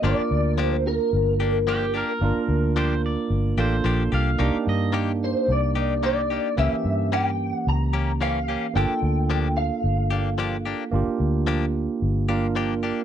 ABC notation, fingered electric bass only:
X:1
M:4/4
L:1/16
Q:"Swing 16ths" 1/4=110
K:Gm
V:1 name="Fingered electric bass" clef=bass
G,,, z D,,6 G,,,8 | G,,, z D,,6 G,,,2 A,,,2 B,,,2 C,,2 | C,, z G,,6 C,,8 | ^C,, z G,,6 C,,8 |
G,,, z D,,6 G,,,8 | G,,, z D,,6 G,,,8 |]